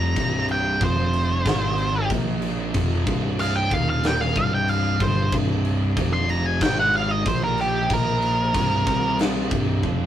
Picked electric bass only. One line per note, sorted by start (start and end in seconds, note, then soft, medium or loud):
0.00 0.13 F1 medium
0.16 0.77 C1 medium
0.81 1.42 F1 loud
1.46 2.06 G#1 loud
2.10 2.71 A#1 loud
2.75 3.05 F1 loud
3.07 3.68 C1 medium
3.71 4.32 D#1 loud
4.36 4.97 C1 medium
5.00 5.30 G1 medium
5.33 5.93 C1 medium
5.97 6.57 F1 loud
6.61 7.22 G#1 loud
7.26 7.86 A#1 loud
7.90 8.51 A#1 loud
8.54 8.85 C1 loud
8.87 9.47 C2 loud
9.51 9.81 C1 loud
9.83 10.06 F1 loud